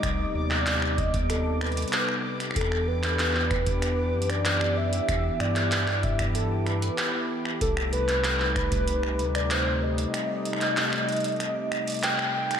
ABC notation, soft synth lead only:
X:1
M:4/4
L:1/16
Q:1/4=95
K:Clyd
V:1 name="Soft synth lead"
_e2 d4 e2 A2 B4 z2 | A2 B4 B4- B d3 e2- | e2 d4 e2 A2 B4 z2 | A2 B4 B4- B d c2 _e2- |
_e12 g2 g2 |]